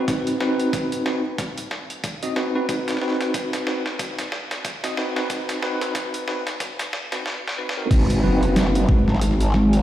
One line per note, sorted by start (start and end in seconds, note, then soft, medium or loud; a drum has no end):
0.08 0.37 C4 medium
0.08 0.37 D#4 medium
0.08 0.37 F#4 medium
0.08 0.37 B4 medium
0.08 kick loud
0.08 snare medium
0.08 closed hi-hat medium
0.27 closed hi-hat soft
0.40 1.03 C4 loud
0.40 1.03 D#4 medium
0.40 1.03 F#4 medium
0.40 1.03 B4 loud
0.40 snare medium
0.60 closed hi-hat soft
0.73 kick medium
0.73 snare medium
0.73 closed hi-hat medium
0.92 closed hi-hat medium
1.06 1.20 C4 medium
1.06 1.20 D#4 medium
1.06 1.20 F#4 medium
1.06 1.20 B4 loud
1.06 snare medium
1.38 kick medium
1.38 snare medium
1.38 closed hi-hat medium
1.57 closed hi-hat soft
1.71 snare medium
1.90 closed hi-hat soft
2.04 kick loud
2.04 snare medium
2.04 closed hi-hat medium
2.23 2.33 C4 medium
2.23 2.33 D#4 medium
2.23 2.33 F#4 medium
2.23 2.33 D#5 loud
2.23 closed hi-hat medium
2.36 2.52 C4 medium
2.36 2.52 D#4 medium
2.36 2.53 F#4 medium
2.36 2.52 B4 loud
2.36 snare medium
2.55 2.66 C4 medium
2.55 2.66 D#4 medium
2.55 2.66 F#4 medium
2.55 2.66 B4 loud
2.69 2.98 C4 medium
2.69 2.98 D#4 medium
2.69 2.98 F#4 medium
2.69 2.98 B4 medium
2.69 kick loud
2.69 snare medium
2.69 closed hi-hat medium
2.88 snare medium
2.88 closed hi-hat soft
2.91 snare medium
2.97 snare medium
3.02 3.64 C4 loud
3.02 3.64 D#4 medium
3.02 3.64 F#4 medium
3.02 3.64 B4 loud
3.02 snare soft
3.08 snare soft
3.12 snare soft
3.21 snare medium
3.21 closed hi-hat soft
3.34 kick loud
3.34 snare loud
3.34 closed hi-hat medium
3.53 snare medium
3.53 closed hi-hat medium
3.67 3.81 C4 medium
3.67 3.81 D#4 medium
3.67 3.81 F#4 medium
3.67 3.81 B4 medium
3.67 snare loud
3.86 snare medium
3.99 kick loud
3.99 snare loud
3.99 closed hi-hat medium
4.19 snare medium
4.19 closed hi-hat soft
4.32 snare loud
4.51 snare medium
4.51 closed hi-hat soft
4.65 kick loud
4.65 snare loud
4.65 closed hi-hat medium
4.84 4.94 C4 loud
4.84 4.94 D#4 medium
4.84 4.94 F#4 medium
4.84 4.94 D#5 loud
4.84 snare medium
4.84 closed hi-hat medium
4.97 5.13 C4 medium
4.97 5.13 D#4 medium
4.97 5.13 F#4 medium
4.97 5.13 B4 loud
4.97 snare loud
5.16 5.27 C4 medium
5.16 5.26 D#4 medium
5.16 5.27 F#4 medium
5.16 5.26 B4 loud
5.16 snare medium
5.30 5.59 C4 medium
5.30 5.59 D#4 medium
5.30 5.59 F#4 medium
5.30 5.59 B4 medium
5.30 kick loud
5.30 snare loud
5.30 closed hi-hat medium
5.49 snare medium
5.49 closed hi-hat medium
5.62 6.24 C4 loud
5.62 6.24 D#4 medium
5.62 6.24 F#4 medium
5.62 6.24 B4 loud
5.62 snare loud
5.81 snare medium
5.81 closed hi-hat soft
5.95 kick loud
5.95 snare loud
5.95 closed hi-hat medium
6.14 closed hi-hat medium
6.28 6.42 C4 medium
6.28 6.42 D#4 medium
6.28 6.42 F#4 medium
6.28 6.42 B4 medium
6.28 snare loud
6.47 snare medium
6.47 closed hi-hat soft
6.60 kick loud
6.60 snare loud
6.60 closed hi-hat medium
6.79 snare loud
6.79 closed hi-hat medium
6.93 snare loud
7.12 7.22 C4 medium
7.12 7.22 D#4 medium
7.12 7.22 F#4 medium
7.12 7.22 B4 loud
7.12 snare medium
7.12 closed hi-hat soft
7.26 snare medium
7.48 snare medium
7.58 7.73 C4 medium
7.58 7.73 D#4 medium
7.58 7.73 F#4 medium
7.58 7.73 B4 medium
7.69 snare loud
7.77 7.88 C4 loud
7.77 7.88 D#4 medium
7.77 7.88 F#4 medium
7.77 7.88 A#4 loud
7.91 8.21 G#1 medium
7.91 8.20 C4 medium
7.91 8.20 D#4 medium
7.91 8.20 F#4 medium
7.91 8.20 B4 medium
7.91 kick loud
7.91 closed hi-hat medium
7.91 crash loud
8.10 closed hi-hat medium
8.23 8.86 F#1 loud
8.23 8.85 C4 loud
8.23 8.85 D#4 medium
8.23 8.86 F#4 medium
8.23 8.85 B4 loud
8.43 closed hi-hat soft
8.56 snare loud
8.56 closed hi-hat medium
8.75 closed hi-hat medium
8.89 9.82 G#1 loud
8.89 9.03 C4 medium
8.89 9.03 D#4 medium
8.89 9.03 F#4 medium
8.89 9.03 B4 loud
8.89 kick loud
9.08 snare soft
9.15 snare soft
9.21 snare soft
9.21 closed hi-hat medium
9.31 snare soft
9.40 closed hi-hat medium
9.54 snare soft
9.73 closed hi-hat soft